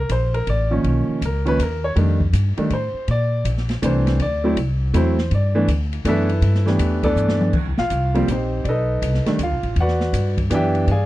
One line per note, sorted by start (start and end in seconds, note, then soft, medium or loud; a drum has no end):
0.09 0.45 A#1 medium
0.09 0.34 C5 medium
0.09 kick soft
0.09 hi-hat pedal medium
0.09 ride medium
0.34 0.46 A#4 medium
0.34 ride soft
0.47 0.83 A1 medium
0.47 0.71 D5 medium
0.47 kick soft
0.47 ride medium
0.71 1.18 D#3 medium
0.71 1.19 F3 medium
0.71 1.19 A#3 medium
0.71 1.19 C#4 medium
0.84 1.06 B1 medium
0.84 kick soft
0.84 ride soft
1.08 muted upright bass stroke soft
1.21 1.57 C#2 medium
1.21 kick soft
1.21 hi-hat pedal medium
1.21 ride medium
1.25 1.47 A#4 medium
1.45 1.57 D#3 medium
1.45 1.57 F3 medium
1.45 1.57 A#3 medium
1.45 1.57 C#4 medium
1.45 1.59 B4 loud
1.45 ride soft
1.59 1.95 D#2 medium
1.59 1.84 A#4 medium
1.59 kick soft
1.59 hi-hat pedal medium
1.59 ride medium
1.84 1.92 C#5 medium
1.96 2.32 F2 medium
1.96 2.17 D#3 medium
1.96 2.17 G3 medium
1.96 2.18 A3 medium
1.96 2.18 D4 medium
1.96 kick soft
1.96 ride medium
2.20 kick soft
2.33 2.55 G2 medium
2.33 kick soft
2.33 hi-hat pedal medium
2.33 ride medium
2.57 2.69 D#3 medium
2.57 2.69 G3 medium
2.57 2.69 A3 medium
2.57 2.69 D4 medium
2.57 muted upright bass stroke soft
2.57 ride soft
2.70 2.93 A2 medium
2.70 3.06 C5 medium
2.70 kick soft
2.70 ride medium
2.94 muted upright bass stroke soft
3.08 3.44 A#2 medium
3.08 3.44 D5 medium
3.08 kick soft
3.08 ride medium
3.45 3.81 A#1 medium
3.45 kick soft
3.45 hi-hat pedal soft
3.45 ride medium
3.57 snare soft
3.69 snare soft
3.69 ride soft
3.82 4.18 C2 medium
3.82 4.19 E3 medium
3.82 4.19 A3 medium
3.82 4.19 C4 medium
3.82 4.19 D4 medium
3.82 4.18 C5 medium
3.82 kick soft
3.82 hi-hat pedal soft
3.82 ride medium
4.07 snare soft
4.07 ride soft
4.19 4.55 D2 medium
4.19 4.55 D5 medium
4.19 kick soft
4.19 ride medium
4.44 4.55 F#3 medium
4.44 4.55 A3 medium
4.44 4.55 C4 medium
4.44 4.56 E4 medium
4.56 4.92 C2 medium
4.56 kick soft
4.56 ride medium
4.94 5.29 E2 medium
4.94 5.15 F#3 medium
4.94 5.15 A3 medium
4.94 5.16 C4 medium
4.94 5.15 E4 medium
4.94 5.30 C5 medium
4.94 kick soft
4.94 hi-hat pedal medium
4.94 ride medium
5.19 snare soft
5.31 5.67 G2 medium
5.31 5.67 D5 medium
5.31 kick soft
5.31 ride medium
5.55 5.66 E3 medium
5.55 5.66 A3 medium
5.55 5.67 B3 medium
5.55 5.67 D4 medium
5.68 6.03 D2 medium
5.68 kick soft
5.68 hi-hat pedal medium
5.68 ride medium
5.93 ride soft
6.05 6.41 F#2 medium
6.05 6.26 E3 medium
6.05 6.26 A3 medium
6.05 6.27 B3 medium
6.05 6.27 D4 medium
6.05 6.64 E4 medium
6.05 6.64 A4 medium
6.05 6.64 E5 medium
6.05 kick soft
6.05 hi-hat pedal medium
6.05 ride medium
6.09 6.64 B4 medium
6.29 ride soft
6.42 6.77 G2 medium
6.42 kick soft
6.42 ride medium
6.55 snare soft
6.65 7.00 E3 medium
6.65 7.00 A3 medium
6.65 7.00 B3 medium
6.65 7.01 D4 medium
6.65 7.01 E4 medium
6.65 7.01 G4 medium
6.65 7.01 B4 medium
6.65 snare soft
6.79 7.15 E2 medium
6.79 kick soft
6.79 hi-hat pedal medium
6.79 ride medium
7.03 7.51 E3 medium
7.03 7.51 A3 medium
7.03 7.51 B3 medium
7.03 7.51 D4 medium
7.03 7.50 A4 medium
7.03 7.50 B4 medium
7.03 7.50 D5 medium
7.03 kick medium
7.03 ride soft
7.15 7.52 G2 medium
7.15 hi-hat pedal medium
7.29 snare medium
7.41 mid tom medium
7.53 7.66 D#2 medium
7.53 kick medium
7.53 crash medium
7.66 7.77 C2 medium
7.78 7.89 A#1 medium
7.78 8.25 F4 medium
7.78 8.25 F5 medium
7.78 snare medium
7.90 8.26 C2 medium
7.90 kick soft
7.90 hi-hat pedal medium
7.90 ride medium
8.14 8.26 F3 medium
8.14 8.26 G3 medium
8.14 8.26 A#3 medium
8.14 8.27 C4 medium
8.14 ride soft
8.28 8.64 A#1 medium
8.28 8.64 C4 soft
8.28 8.64 D#4 soft
8.28 8.64 G4 soft
8.28 8.64 C5 medium
8.28 kick soft
8.28 hi-hat pedal medium
8.28 ride medium
8.64 9.00 B1 medium
8.64 8.66 D5 medium
8.64 kick soft
8.64 ride soft
8.69 9.24 D#4 medium
8.69 9.24 A4 medium
8.69 9.24 B4 medium
8.69 9.24 D#5 medium
9.02 9.24 C2 medium
9.02 kick soft
9.02 hi-hat pedal medium
9.02 ride medium
9.14 snare soft
9.26 9.38 D#3 medium
9.26 9.38 G3 medium
9.26 9.38 A3 medium
9.26 9.38 D4 medium
9.26 muted upright bass stroke soft
9.26 snare soft
9.26 ride soft
9.39 9.51 D2 medium
9.39 kick soft
9.39 hi-hat pedal soft
9.39 ride medium
9.43 9.76 F4 medium
9.43 9.76 F5 medium
9.51 9.62 B1 medium
9.63 9.75 A1 medium
9.63 ride soft
9.76 10.12 E2 medium
9.76 kick soft
9.76 ride medium
9.80 10.36 F#4 medium
9.80 10.36 B4 medium
9.80 10.36 D5 medium
9.80 10.35 F#5 medium
9.88 snare soft
10.01 snare soft
10.13 10.49 G2 medium
10.13 kick soft
10.13 hi-hat pedal medium
10.13 ride medium
10.37 kick soft
10.37 ride soft
10.50 10.86 F#2 medium
10.50 10.87 E3 medium
10.50 10.88 B3 medium
10.50 10.88 D4 medium
10.50 10.53 G4 medium
10.50 10.87 G5 medium
10.50 kick soft
10.50 hi-hat pedal medium
10.50 ride medium
10.54 10.87 G4 medium
10.54 10.87 D5 medium
10.54 10.87 E5 medium
10.75 ride soft
10.87 11.06 G2 medium
10.87 kick soft
10.87 ride medium
10.91 11.06 G#4 medium
10.91 11.06 D5 medium
10.91 11.06 F5 medium
10.91 11.06 G#5 medium